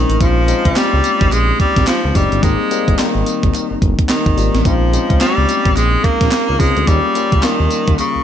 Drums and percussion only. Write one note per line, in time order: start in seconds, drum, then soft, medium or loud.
0.10 closed hi-hat medium
0.21 kick loud
0.21 closed hi-hat medium
0.21 tambourine medium
0.48 closed hi-hat medium
0.48 tambourine medium
0.65 kick medium
0.65 closed hi-hat medium
0.76 snare loud
0.76 clap medium
0.76 closed hi-hat medium
0.76 tambourine loud
1.04 closed hi-hat medium
1.04 tambourine medium
1.21 kick loud
1.21 closed hi-hat medium
1.32 clap medium
1.32 closed hi-hat medium
1.32 tambourine medium
1.60 kick loud
1.60 closed hi-hat medium
1.76 kick loud
1.76 snare medium
1.76 closed hi-hat medium
1.87 snare loud
1.87 clap loud
1.87 clap medium
1.87 closed hi-hat medium
1.87 tambourine medium
2.15 kick medium
2.15 open hi-hat medium
2.15 tambourine medium
2.32 closed hi-hat medium
2.43 kick loud
2.43 closed hi-hat medium
2.43 tambourine medium
2.71 closed hi-hat medium
2.71 tambourine medium
2.88 kick medium
2.88 closed hi-hat medium
2.98 snare loud
2.98 clap loud
2.98 closed hi-hat medium
2.98 tambourine loud
3.26 closed hi-hat medium
3.26 tambourine medium
3.43 kick loud
3.43 closed hi-hat medium
3.54 clap medium
3.54 closed hi-hat medium
3.54 tambourine medium
3.82 kick loud
3.82 closed hi-hat medium
3.99 kick loud
3.99 closed hi-hat medium
4.09 snare loud
4.09 clap loud
4.09 clap medium
4.09 closed hi-hat medium
4.09 tambourine medium
4.26 kick loud
4.38 open hi-hat medium
4.38 tambourine medium
4.55 snare medium
4.55 closed hi-hat medium
4.65 kick loud
4.65 closed hi-hat medium
4.65 tambourine medium
4.93 closed hi-hat medium
4.93 tambourine medium
5.10 kick medium
5.10 closed hi-hat medium
5.20 snare loud
5.20 clap medium
5.20 closed hi-hat medium
5.20 tambourine loud
5.49 closed hi-hat medium
5.49 tambourine medium
5.66 kick loud
5.66 closed hi-hat medium
5.76 clap medium
5.76 closed hi-hat medium
5.76 tambourine medium
6.04 kick loud
6.04 closed hi-hat medium
6.21 kick loud
6.21 snare medium
6.21 closed hi-hat medium
6.31 snare loud
6.31 clap loud
6.31 clap medium
6.31 closed hi-hat medium
6.31 tambourine medium
6.60 kick medium
6.60 open hi-hat medium
6.60 tambourine medium
6.77 closed hi-hat medium
6.87 kick loud
6.87 closed hi-hat medium
6.87 tambourine medium
7.15 closed hi-hat medium
7.15 tambourine medium
7.32 kick medium
7.32 closed hi-hat medium
7.43 snare loud
7.43 clap medium
7.43 closed hi-hat medium
7.43 tambourine loud
7.71 closed hi-hat medium
7.71 tambourine medium
7.87 kick loud
7.87 closed hi-hat medium
7.98 clap medium
7.98 closed hi-hat medium
7.98 tambourine medium